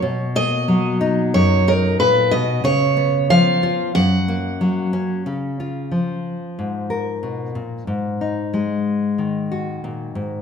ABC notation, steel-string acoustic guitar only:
X:1
M:4/4
L:1/8
Q:1/4=92
K:C#mix
V:1 name="Steel-string acoustic guitar"
z d2 z c A B d | c2 e2 f3 z | z8 | z8 |]